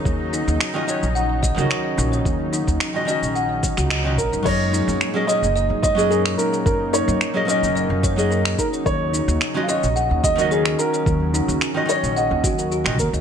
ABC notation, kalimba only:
X:1
M:4/4
L:1/16
Q:1/4=109
K:F#
V:1 name="Kalimba"
z2 D z3 d z f z d A c z D c | z2 D z3 d z f z c F d c c D | z2 D z3 c z d z c G A z D A | z2 D z3 c z d z c G A z D c |
z2 D z3 d z f z d A c z D c | z2 D z3 d z f z F A F z c d |]